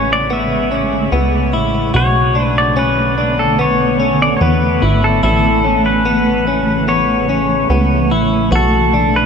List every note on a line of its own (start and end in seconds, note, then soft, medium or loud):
0.00 1.08 A1 loud
0.00 1.92 C#3 medium
0.00 1.92 G#3 medium
0.00 9.26 A3 medium
0.00 0.30 C#4 medium
0.00 0.12 C#5 medium
0.13 0.32 D5 loud
0.30 0.71 B3 medium
0.30 1.51 E5 medium
0.71 1.12 C#4 medium
1.12 1.55 C#2 medium
1.12 1.53 B3 medium
1.53 1.92 A1 medium
1.53 1.94 E4 medium
1.94 4.37 B1 loud
1.94 5.20 D3 medium
1.94 5.20 B3 medium
1.94 2.35 F#4 medium
1.94 2.44 C#5 loud
2.35 2.76 D4 medium
2.44 2.58 B4 loud
2.58 2.78 D5 medium
2.77 3.17 C#4 medium
2.77 3.41 B4 loud
3.18 3.58 D4 medium
3.39 3.58 A4 medium
3.59 3.99 B3 medium
3.59 4.22 C#5 medium
4.00 4.41 C#4 medium
4.22 4.35 D5 medium
4.37 4.42 C#5 medium
4.41 4.80 E2 medium
4.41 4.82 B3 medium
4.41 5.05 B4 medium
4.82 5.21 G#1 medium
4.82 5.22 E4 medium
5.04 5.23 A4 medium
5.23 7.66 A1 loud
5.23 8.49 C#3 medium
5.23 8.48 E3 medium
5.23 5.64 E4 medium
5.23 5.81 A4 medium
5.64 6.05 C#4 medium
5.86 6.84 B4 medium
6.06 6.47 B3 medium
6.47 6.88 C#4 medium
6.88 7.29 B3 medium
6.88 7.66 C#5 medium
7.29 7.70 C#4 medium
7.70 8.13 C#2 medium
7.70 8.11 B3 medium
8.11 8.50 A1 medium
8.11 8.52 E4 medium
8.51 9.26 B1 loud
8.51 9.26 B2 medium
8.51 9.26 B3 medium
8.51 8.93 F#4 medium
8.55 9.17 A4 medium
8.94 9.26 D4 medium
9.16 9.26 B4 medium